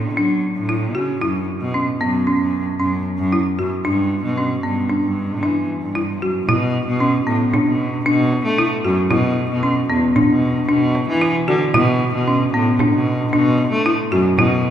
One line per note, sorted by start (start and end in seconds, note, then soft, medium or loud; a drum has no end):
0.00 0.18 A2 medium
0.16 0.41 F#3 medium
0.16 0.51 D4 medium
0.56 0.97 A2 medium
0.69 0.86 E4 medium
0.95 1.20 C#3 medium
0.95 1.12 F#4 medium
1.21 1.46 F#2 medium
1.21 1.56 E4 medium
1.61 1.85 B2 medium
1.74 1.92 C#4 medium
2.01 2.38 F#2 medium
2.01 2.18 B3 medium
2.27 2.61 C#4 medium
2.40 2.64 F#2 medium
2.79 3.04 F#2 medium
2.79 3.14 C#4 medium
3.18 3.43 F#2 medium
3.33 3.50 E4 medium
3.58 3.70 F#2 medium
3.58 3.76 F#4 medium
3.85 4.21 G2 medium
3.85 4.19 D4 medium
4.24 4.61 B2 medium
4.38 4.55 C#4 medium
4.63 4.89 G2 medium
4.63 4.81 B3 medium
4.90 5.24 D4 medium
5.03 5.45 G2 medium
5.43 5.67 E3 medium
5.43 5.77 D4 medium
5.83 6.23 G2 medium
5.95 6.13 E4 medium
6.22 6.46 F#2 medium
6.22 6.39 F#4 medium
6.47 6.84 B2 medium
6.47 6.83 E4 medium
6.47 frame drum medium
6.88 7.24 B2 medium
7.00 7.18 C#4 medium
7.00 frame drum soft
7.27 7.51 A2 medium
7.27 7.44 B3 medium
7.27 frame drum soft
7.53 7.88 D4 medium
7.53 frame drum medium
7.66 8.03 B2 medium
8.05 8.42 B2 loud
8.05 8.40 D4 medium
8.33 frame drum soft
8.45 8.70 A3 medium
8.58 8.76 E4 medium
8.85 8.97 F#2 medium
8.85 9.02 F#4 medium
9.10 9.47 B2 medium
9.10 9.45 E4 medium
9.10 frame drum medium
9.51 9.87 B2 medium
9.63 9.80 C#4 medium
9.63 frame drum soft
9.90 10.14 E2 medium
9.90 10.07 B3 medium
9.90 frame drum soft
10.16 10.50 D4 medium
10.16 frame drum medium
10.30 10.66 B2 medium
10.69 11.05 B2 loud
10.69 11.03 D4 medium
10.95 frame drum medium
11.09 11.33 E3 medium
11.21 11.39 E4 medium
11.48 11.60 D3 medium
11.48 11.65 F#4 medium
11.74 12.11 B2 loud
11.74 12.09 E4 medium
11.74 frame drum medium
12.14 12.50 B2 medium
12.27 12.45 C#4 medium
12.27 frame drum soft
12.53 12.78 A2 medium
12.53 12.71 B3 medium
12.53 frame drum soft
12.79 13.15 D4 medium
12.79 frame drum medium
12.93 13.29 B2 medium
13.32 13.69 B2 loud
13.32 13.67 D4 medium
13.58 frame drum soft
13.72 13.96 A3 medium
13.86 14.03 E4 medium
14.12 14.24 F#2 loud
14.12 14.29 F#4 medium
14.38 14.70 B2 medium
14.38 14.70 E4 medium
14.38 frame drum medium